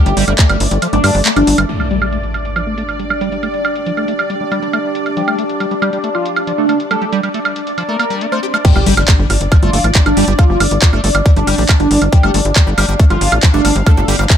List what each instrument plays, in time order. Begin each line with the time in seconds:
Already playing: ambient pad A3 D5, analog synth lead G4
0.06 analog synth bass G1, acid bass G3, closed hi-hat
0.17 analog synth bass G1, acid bass G3, open hi-hat
0.28 analog synth bass G1, acid bass G3, closed hi-hat, high woodblock
0.39 acid bass A3, kick, clap, closed hi-hat
0.49 analog synth bass G1, closed hi-hat, high woodblock
0.60 analog synth bass G1, open hi-hat
0.71 analog synth bass G1, closed hi-hat
0.82 acid bass F3, closed hi-hat, high woodblock
0.93 analog synth bass G1, acid bass A3, analog synth lead D4, closed hi-hat
1.04 analog synth bass G2, acid bass G3, open hi-hat, high woodblock
1.15 analog synth bass G1, open hi-hat
1.26 acid bass A3, clap, closed hi-hat
1.36 analog synth bass G1, acid bass F3, analog synth lead D4, closed hi-hat, high woodblock
1.47 analog synth bass G1, acid bass G3, open hi-hat
1.58 analog synth bass G1, acid bass G3, closed hi-hat, high woodblock
1.69 acid bass G3, ambient pad D4 D5, closed hi-hat, crash, impact
1.80 acid bass G3, closed hi-hat, high woodblock
1.84 ambient pad G4 G5
1.91 acid bass G3, closed hi-hat
2.02 acid bass G3, closed hi-hat, high woodblock
2.12 acid bass A3, closed hi-hat
2.23 closed hi-hat
2.34 closed hi-hat, high woodblock
2.45 closed hi-hat
2.56 acid bass F3, closed hi-hat, high woodblock
2.67 acid bass A3
2.78 acid bass A3, closed hi-hat
2.89 closed hi-hat, high woodblock
2.99 acid bass G3, closed hi-hat
3.10 acid bass G3, high woodblock
3.21 acid bass G3, closed hi-hat
3.32 acid bass G3, closed hi-hat
3.43 acid bass A3, closed hi-hat, high woodblock
3.54 closed hi-hat
3.65 closed hi-hat, high woodblock
3.76 closed hi-hat
3.86 acid bass F3, closed hi-hat
3.97 acid bass A3, closed hi-hat, high woodblock
4.08 acid bass A3, closed hi-hat
4.19 closed hi-hat, high woodblock
4.30 acid bass G3, closed hi-hat
4.41 acid bass G3
4.52 acid bass G3, closed hi-hat, high woodblock
4.62 acid bass G3, closed hi-hat
4.73 acid bass A3, closed hi-hat, high woodblock
4.95 closed hi-hat
5.06 closed hi-hat, high woodblock
5.17 acid bass F3, analog synth lead G4, closed hi-hat
5.28 acid bass A3, closed hi-hat, high woodblock
5.39 acid bass A3, closed hi-hat
5.49 closed hi-hat
5.60 acid bass G3, closed hi-hat, high woodblock
5.71 acid bass G3, closed hi-hat
5.82 acid bass G3, closed hi-hat, high woodblock
5.93 acid bass G3, closed hi-hat
6.04 acid bass A3, closed hi-hat
6.15 analog synth lead F4, high woodblock
6.26 closed hi-hat
6.36 closed hi-hat, high woodblock
6.47 acid bass F3, closed hi-hat
6.58 acid bass A3, analog synth lead D4
6.69 acid bass A3, closed hi-hat, high woodblock
6.80 closed hi-hat
6.91 acid bass G3, analog synth lead A4, closed hi-hat, high woodblock
7.02 acid bass G3, closed hi-hat
7.13 acid bass G3, closed hi-hat
7.23 closed hi-hat, high woodblock
7.34 acid bass A3, closed hi-hat
7.45 closed hi-hat, high woodblock
7.56 closed hi-hat
7.67 closed hi-hat
7.78 acid bass F3, closed hi-hat, high woodblock
7.89 acid bass A3, analog synth lead A#4
7.99 acid bass A#3, closed hi-hat, high woodblock
8.10 acid bass G3, closed hi-hat
8.21 acid bass A#3, closed hi-hat
8.32 acid bass A3, analog synth lead C5, closed hi-hat, high woodblock
8.43 acid bass G4, closed hi-hat
8.54 acid bass A3, closed hi-hat, high woodblock
8.65 acid bass G3, ambient pad D4 D5, analog synth lead G4, kick, closed hi-hat, crash, impact
8.76 analog synth bass G1, acid bass G3, high woodblock
8.86 analog synth bass G1, acid bass G3, open hi-hat
8.97 analog synth bass G1, closed hi-hat, high woodblock
9.08 acid bass A3, kick, clap, closed hi-hat
9.19 analog synth bass G1
9.30 analog synth bass G1, open hi-hat, high woodblock
9.41 analog synth bass G1, closed hi-hat
9.52 acid bass F3, kick, closed hi-hat, high woodblock
9.63 analog synth bass G1, acid bass A3, analog synth lead F4, closed hi-hat
9.73 analog synth bass G1, acid bass A3, open hi-hat
9.84 analog synth bass A1, closed hi-hat, high woodblock
9.95 acid bass G3, kick, clap, closed hi-hat
10.06 analog synth bass G1, acid bass G3, analog synth lead D4, closed hi-hat, high woodblock
10.17 analog synth bass G1, acid bass G3, open hi-hat
10.28 analog synth bass G1, acid bass G3, closed hi-hat
10.39 acid bass A3, analog synth lead F4, kick, closed hi-hat, high woodblock
10.50 analog synth bass G1
10.60 analog synth bass G1, open hi-hat, high woodblock
10.71 analog synth bass G1, closed hi-hat
10.82 acid bass F3, kick, clap, closed hi-hat
10.93 analog synth bass G1, acid bass A3, high woodblock
11.04 analog synth bass G1, acid bass A3, open hi-hat
11.15 analog synth bass G1, closed hi-hat, high woodblock
11.26 acid bass G3, kick, closed hi-hat
11.36 analog synth bass G1, acid bass G3, analog synth lead D4, closed hi-hat
11.47 analog synth bass G1, acid bass G3, open hi-hat, high woodblock
11.58 analog synth bass A1, acid bass G3, open hi-hat
11.69 acid bass A3, kick, clap, closed hi-hat, high woodblock
11.80 analog synth bass G1, analog synth lead D4, closed hi-hat
11.91 analog synth bass G1, open hi-hat
12.02 analog synth bass G1, closed hi-hat, high woodblock
12.12 acid bass F3, analog synth lead G4, ambient pad F5, kick, closed hi-hat
12.23 analog synth bass G1, acid bass A3, high woodblock
12.34 analog synth bass G1, acid bass A3, open hi-hat
12.45 analog synth bass G1, closed hi-hat
12.56 acid bass G3, kick, clap, closed hi-hat, high woodblock
12.67 analog synth bass G1, acid bass G3
12.78 analog synth bass G1, acid bass G3, open hi-hat, high woodblock
12.89 analog synth bass G1, acid bass G3, closed hi-hat
12.99 acid bass A3, kick, closed hi-hat
13.10 analog synth bass G1, analog synth lead F4, closed hi-hat, high woodblock
13.21 analog synth bass G1, open hi-hat
13.32 analog synth bass A1, closed hi-hat, high woodblock
13.43 acid bass F3, kick, clap, closed hi-hat
13.54 analog synth bass G1, acid bass A3, analog synth lead D4, closed hi-hat
13.65 analog synth bass G1, acid bass A3, open hi-hat, high woodblock
13.76 analog synth bass G1, closed hi-hat
13.86 acid bass G3, analog synth lead A4, kick, closed hi-hat, high woodblock
13.97 analog synth bass G1, acid bass G3, closed hi-hat
14.08 analog synth bass G1, acid bass G3, open hi-hat
14.19 analog synth bass G1, acid bass G3, closed hi-hat, high woodblock
14.30 acid bass A3, kick, clap, closed hi-hat